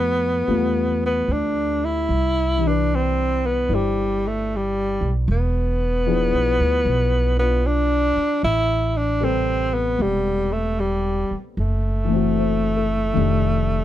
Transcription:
Already playing: F2 F3 A3 B3 G4
0.47 E2 G3 A3 B3 F4
1.06 B3
1.28 D2
1.32 D4
1.85 E4
2.09 C2
2.57 E3 G3
2.64 D4 B4
2.95 C4
3.46 B3
3.68 G1 D4 E4 C5
3.75 G3
4.27 A3
4.56 G3
5.01 B1
5.28 E1 B3
6.06 F3 D4 E4 G#4
6.33 B1
6.60 D2
6.85 B1
7.37 B3 D4 F4
7.67 D4
8.16 muted upright bass stroke
8.43 A1 E4
8.97 D4
9.20 C3 G3 C4 A4 B4
9.74 B3
9.98 E1 B3 G4
10.02 G3
10.52 A3
10.80 G3
11.31 muted upright bass stroke
11.57 F#1 A3
12.05 E3 A3
12.12 C4 F#4
12.38 C5
12.77 A4
13.13 F1 D#3 A3
13.17 D4 G4

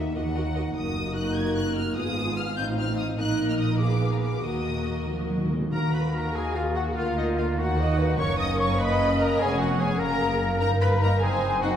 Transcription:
Already playing: D#3 A#3 D#4 E5
0.15 D#2 A#3 D#4 F#4 A#4 D#5 F#5
0.34 A#3 F#4 A#4 D#5
0.55 A#3 F#4 A#4 D#5
0.75 F#1 F#2 A#3 D#4 F#4 A#4 D#5 D#6
1.15 F#6
1.35 G#6
1.56 F#6
1.76 F6
1.95 G#1 G#2 B3 F4 G#4 F5 D#6
2.36 F6
2.56 A1 A2 C4 D#4 F4 G6
2.77 F6
2.98 D#6
3.18 A#1 A#2 A#3 D#4 A#4 D#5 F#6
3.49 F6
3.59 D#6
3.79 A#3 B3 G#4 B4 F5 D6
4.11 A#5
4.22 D6
4.43 D#2 D#3 A#3 F#4 A#4 D#5 D#6
4.52 D#3
4.60 D#3
4.68 D#3
4.76 D#3
4.83 D#3
4.91 D#3
4.99 D#3
5.06 D#3 F3
5.14 D#3
5.21 D#3
5.29 D#3 F#3
5.37 D#3
5.45 D#3
5.51 D#3 G#3
5.60 D#3
5.72 D#2 D#3 A#3 F#4 A#4 A#5
5.93 B4 B5
6.14 A#4 A#5
6.35 G#4 G#5
6.55 F4 F5
6.75 F#4 F#5
6.96 D2 D3 F4 A#4 F5
7.17 D#4 D#5
7.37 F4 F5
7.57 D#2 D#3 D#4 F#4 F#5
7.78 D#5
7.98 B4
8.18 F#1 F#2 A#3 C#4 A#4 C#5 C#6
8.39 D#5 D#6
8.59 C#5 C#6
8.79 B4 D#5 B5
9.19 A#4 A#5
9.39 F1 F2 B3 G#4 C#5 G#5
9.59 F#4 F#5
9.79 G#4 G#5
9.99 F#1 F#2 A#3 A#4 A#5
10.21 G#4
10.41 A#4
10.60 G1 G2 D#4 A#4 A#5
10.81 B4 B5
11.01 A#3 D#4 A#4 A#5
11.21 F#1 F#2 C4 G#4 C5 G#5
11.61 C4 D#4 F#4 F#5

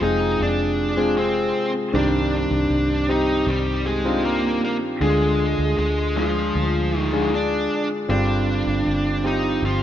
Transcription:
Already playing: C3 F4 G#4
0.00 F1 G#3 C4 D#4 F4 G#4 D#5
0.40 F1 D4 D5
0.97 G#3 C4 F4 G#4
1.18 C4 C5
1.93 C2 G2 D#3 C4 D4 G4 D5
2.51 C2
2.70 C2
3.09 C4 D#4 G4 D#5
3.47 C2 G3 G4
3.87 G#3 G#4
4.05 C4 D4 D#4 F4
4.25 A#3 A#4
4.65 A#3 A#4
5.01 D2 D3 G#3 D4 F4 G#4
5.59 D2
5.78 D2 G#3 G#4
6.16 F3 G#3 D4 F4 G#4
6.55 D2
6.99 D#4
7.12 G#3 D4 F4 G#4
7.34 D4 D5
8.09 G1 G2 D3 C4 D4 F4 G4 D5
8.67 G1
8.86 G1
9.24 C4 D#4 F4 G4 D#5
9.62 G1 F3 F4

